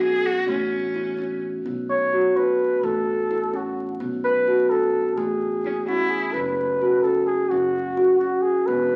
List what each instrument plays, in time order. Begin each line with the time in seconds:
Already playing: upright bass B1
0.01 kalimba D4, cello G#4
0.26 cello F#4
0.48 upright bass A1, kalimba A3, cello C#4
0.95 kalimba E4
1.19 kalimba C#4
1.66 upright bass B1, kalimba B3
1.90 flugelhorn C#5
2.13 kalimba F#4
2.37 kalimba D4, flugelhorn B4
2.83 upright bass A1, kalimba A3, flugelhorn A4
3.31 kalimba E4
3.54 kalimba C#4, flugelhorn F#4
4.00 upright bass B1, kalimba B3
4.24 flugelhorn B4
4.48 kalimba F#4
4.70 kalimba D4, flugelhorn A4
5.17 upright bass A1, kalimba A3, flugelhorn G#4
5.64 cello C#4, kalimba E4
5.87 kalimba C#4, cello E4, flugelhorn F#4
6.09 flugelhorn G#4
6.33 upright bass F#1, kalimba C#4, flugelhorn B4
6.82 kalimba F#4
7.03 kalimba C#4, flugelhorn A4
7.26 flugelhorn G#4
7.50 upright bass F#1, kalimba C#4, flugelhorn F#4
7.97 kalimba F#4
8.18 kalimba C#4, flugelhorn F#4
8.42 flugelhorn G#4
8.66 upright bass E1, kalimba B3, flugelhorn B4